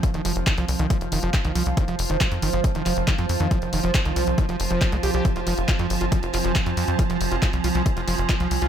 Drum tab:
HH |xxoxxxoxxxoxxxox|xxoxxxoxxxoxxxox|xxoxxxoxxxoxxxox|xxoxxxoxxxoxxxox|
CP |----x-------x---|----x-----x-x---|----x-------x---|----x-----x-x---|
BD |o---o---o---o---|o---o---o---o---|o---o---o---o---|o---o---o---o---|

HH |xxoxxxoxxxoxxxox|
CP |----x-------x---|
BD |o---o---o---o---|